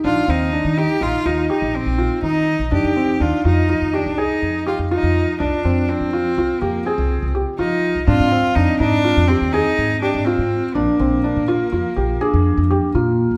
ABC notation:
X:1
M:11/8
L:1/16
Q:1/4=123
K:Fdor
V:1 name="Felt piano"
D2 C2 D2 E2 E2 F2 G4 F2 E4 | D2 C2 D2 F2 F2 G2 A4 G2 F4 | D2 C2 D2 F2 F2 G2 A4 G2 F4 | D2 C2 D2 E2 F2 G2 A4 G2 F4 |
D2 C2 D2 F2 F2 G2 A4 G2 F4 |]
V:2 name="Cello"
F2 E4 G2 F2 E2 E2 C4 E4 | G4 F2 E4 D2 E4 F2 E4 | D4 C6 B,2 C4 z2 E4 | F4 E2 D4 C2 E4 D2 C4 |
B,16- B,2 z4 |]
V:3 name="Vibraphone"
E16- E4 z2 | E16- E6 | F16- F6 | C16- C6 |
D6 F6 D6 B,4 |]
V:4 name="Upright bass" clef=bass
B,,, z E,,3 E,2 z B,,, z E,,2 z B,,,2 B,,,2 z E,3 B,,, | F,, F,,2 z E,, z F,,3 E,,2 C,,2 z F,,3 F,,2 F,,2 z | C,, z F,,3 F,2 z C,, z F,,2 z C,,2 C,,2 z F,3 C,, | A,, A,,2 z F,, z A,,3 F,,2 E,,2 z A,,3 A,,2 A,,2 z |
B,,, z B,,,3 B,,2 z F,, z B,,,2 z F,,2 F,,2 z B,,3 G,,, |]